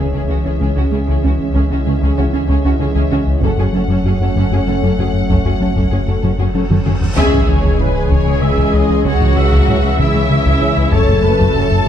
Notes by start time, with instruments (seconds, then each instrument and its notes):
Already playing: sub bass C#2, analog synth pad E3 C#4 G#4 C#5, french horn section G#3 E4, violin section E5, impact
0.12 analog synth bass C#2, cello section C#3, synth arpeggio sound C#3, viola section C#4, violin section G#4
0.29 double bass section C#2, analog synth bass C#2, cello section C#3, synth arpeggio sound C#4, viola section C#4, violin section F#4
0.44 analog synth bass C#2, cello section C#3, synth arpeggio sound C#4, viola section C#4, violin section G#4
0.60 analog synth bass C#2, double bass section C#2, cello section C#3, synth arpeggio sound C#3, viola section C#4, violin section G#4
0.76 analog synth bass C#2, cello section C#3, synth arpeggio sound C#4, viola section C#4, violin section F#4
0.92 double bass section C#2, cello section C#3, analog synth bass C#3, synth arpeggio sound G#3, viola section C#4, violin section G#4
1.08 analog synth bass C#2, synth arpeggio sound C#3, cello section C#3, viola section C#4, violin section G#4
1.23 double bass section C#2, analog synth bass C#2, cello section C#3, viola section C#4, synth arpeggio sound C#4, violin section F#4
1.40 analog synth bass C#2
1.54 double bass section C#2, analog synth bass C#2, cello section C#3, synth arpeggio sound C#3, viola section C#4, violin section G#4
1.70 analog synth bass C#2, cello section C#3, synth arpeggio sound C#4, viola section C#4, violin section F#4
1.86 double bass section C#2, cello section C#3, analog synth bass C#3, synth arpeggio sound G#3, viola section C#4, violin section G#4
2.02 analog synth bass C#2, synth arpeggio sound C#3, cello section C#3, viola section C#4, violin section G#4
2.17 double bass section C#2, analog synth bass C#2, cello section C#3, viola section C#4, synth arpeggio sound C#4, violin section F#4
2.33 analog synth bass C#2, cello section C#3, viola section C#4, synth arpeggio sound C#4, violin section G#4
2.49 analog synth bass C#2, double bass section C#2, synth arpeggio sound C#3, cello section C#3, viola section C#4, violin section G#4
2.64 analog synth bass C#2, cello section C#3, synth arpeggio sound C#4, viola section C#4, violin section F#4
2.79 double bass section C#2, analog synth bass C#3, cello section C#3, synth arpeggio sound G#3, viola section C#4, violin section G#4
2.95 analog synth bass C#2, cello section C#3, synth arpeggio sound C#3, viola section C#4, violin section G#4
3.12 double bass section C#2, analog synth bass C#2, cello section C#3, viola section C#4, synth arpeggio sound C#4, violin section F#4
3.27 analog synth bass C#2
3.42 double bass section F#1, sub bass F#1, analog synth bass F#2, cello section F#2, analog synth pad F#3 C#4 A4 C#5, synth arpeggio sound F#3, french horn section A3 C#4, viola section C#4, violin section A4 F#5, taiko
3.57 analog synth bass F#2, cello section F#2, viola section C#4, synth arpeggio sound F#4, violin section G#4
3.72 double bass section F#1, cello section F#2, analog synth bass F#3, synth arpeggio sound C#4, viola section C#4, violin section A4
3.88 analog synth bass F#2, cello section F#2, synth arpeggio sound F#3, viola section C#4, violin section A4
4.04 double bass section F#1, analog synth bass F#2, cello section F#2, viola section C#4, synth arpeggio sound F#4, violin section G#4
4.20 analog synth bass F#2, cello section F#2, viola section C#4, synth arpeggio sound F#4, violin section A4
4.36 double bass section F#1, analog synth bass F#2, cello section F#2, synth arpeggio sound F#3, viola section C#4, violin section A4
4.51 analog synth bass F#2, cello section F#2, viola section C#4, synth arpeggio sound F#4, violin section G#4
4.67 double bass section F#1, cello section F#2, analog synth bass F#3, synth arpeggio sound C#4, viola section C#4, violin section A4
4.83 analog synth bass F#2, cello section F#2, synth arpeggio sound F#3, viola section C#4, violin section A4
4.99 double bass section F#1, analog synth bass F#2, cello section F#2, viola section C#4, synth arpeggio sound F#4, violin section G#4
5.13 analog synth bass F#2
5.29 double bass section F#1, analog synth bass F#2, cello section F#2, synth arpeggio sound F#3, viola section C#4, violin section A4, taiko, cymbal swell
5.45 analog synth bass F#2, cello section F#2, viola section C#4, synth arpeggio sound F#4, violin section G#4
5.60 double bass section F#1, cello section F#2, analog synth bass F#3, viola section C#4, synth arpeggio sound C#4, violin section A4
5.76 analog synth bass F#2, cello section F#2, synth arpeggio sound F#3, viola section C#4, violin section A4, taiko
5.91 double bass section F#1, analog synth bass F#2, cello section F#2, viola section C#4, synth arpeggio sound F#4, violin section G#4
6.07 analog synth bass F#2, cello section F#2, viola section C#4, synth arpeggio sound F#4, violin section A4
6.22 double bass section F#1, analog synth bass F#2, cello section F#2, synth arpeggio sound F#3, viola section C#4, violin section A4
6.39 analog synth bass F#2, cello section F#2, viola section C#4, synth arpeggio sound F#4, violin section G#4
6.54 double bass section F#1, cello section F#2, analog synth bass F#3, synth arpeggio sound C#4, viola section C#4, violin section A4
6.69 analog synth bass F#2, cello section F#2, synth arpeggio sound F#3, viola section C#4, violin section A4, taiko mid
6.85 double bass section F#1, analog synth bass F#2, cello section F#2, viola section C#4, synth arpeggio sound F#4, violin section G#4, taiko mid
7.01 analog synth bass F#2, taiko low
7.16 analog synth bass C#2, double bass section C#2, sub bass C#2, synth arpeggio sound C#3, cello section C#3, analog synth pad E3 C#4 G#4 C#5, french horn section G#3, violin section G#4 G#5, viola section E5, taiko, sub drop
7.33 analog synth bass C#2, synth arpeggio sound E3, taiko low-mid
7.48 analog synth bass C#2, synth arpeggio sound E3, viola section C#5
7.63 analog synth bass C#2, synth arpeggio sound C#3, taiko
7.79 analog synth bass C#2, trombone section E3 C#4, viola section B4, taiko low-mid
7.94 analog synth bass C#2
8.10 analog synth bass C#2, double bass section C#2, cello section C#3, synth arpeggio sound C#3, viola section C#5, taiko
8.26 analog synth bass C#3, synth arpeggio sound G#3
8.42 analog synth bass C#3, synth arpeggio sound G#3, viola section E5
8.57 analog synth bass C#2, synth arpeggio sound C#3, taiko
8.73 analog synth bass C#2, trombone section E3 C#4, synth arpeggio sound C#4, viola section D#5
8.89 analog synth bass C#2, synth arpeggio sound E3
9.05 analog synth bass C#2, double bass section C#2, synth arpeggio sound C#3, cello section C#3, french horn section F#3, violin section F#4 F#5, viola section C#5, taiko
9.21 analog synth bass C#2, synth arpeggio sound E3, taiko low-mid
9.37 analog synth bass C#2, synth arpeggio sound E3, viola section E5
9.52 analog synth bass C#2, synth arpeggio sound C#3, taiko
9.68 analog synth bass C#2, trombone section E3 C#4, viola section E5, taiko low-mid
9.84 analog synth bass C#2
9.99 analog synth bass C#2, double bass section C#2, synth arpeggio sound C#3, cello section C#3, french horn section E3, violin section E4 E5, taiko
10.15 analog synth bass C#3, synth arpeggio sound G#3
10.31 analog synth bass C#3, synth arpeggio sound G#3
10.46 analog synth bass C#2, synth arpeggio sound C#3, taiko
10.62 analog synth bass C#2, trombone section E3 C#4, synth arpeggio sound C#4
10.77 analog synth bass C#2, synth arpeggio sound E3
10.92 sub bass F#1, double bass section F#1, analog synth bass F#2, cello section F#2, synth arpeggio sound F#3, analog synth pad F#3 C#4 F#4 C#5, french horn section A3, violin section A4 A5, viola section C#5, taiko
11.08 analog synth bass F#2, synth arpeggio sound A3, taiko low-mid
11.24 analog synth bass F#2, synth arpeggio sound A3, viola section B4
11.39 analog synth bass F#2, synth arpeggio sound F#3, taiko
11.55 analog synth bass F#2, trombone section F#3 C#4, viola section A4, taiko low-mid
11.72 analog synth bass F#2